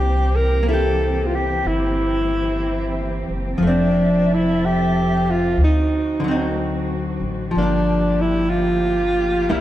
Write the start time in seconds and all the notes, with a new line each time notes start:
Already playing: C2 E3 A#3 C4 G4
0.36 A#4
0.63 A#3
0.69 E4 A4
0.74 G4
1.26 F4
1.35 G4
1.64 G1 E4
3.28 F#1
3.58 F1 F3 A4 E5
3.62 A3
3.67 C4 D4
4.34 E4
4.66 G4
5.31 F4
5.56 D2 D3 F#4
5.64 D#4
6.20 D3
6.24 F#3
6.28 C4 D#4
7.20 A1
7.51 G1 F3 A#3 G4
7.55 F3 A#3 D4
7.62 D4
8.21 E4
8.50 F4
9.49 C2 E3 G3 A#3 C4 E4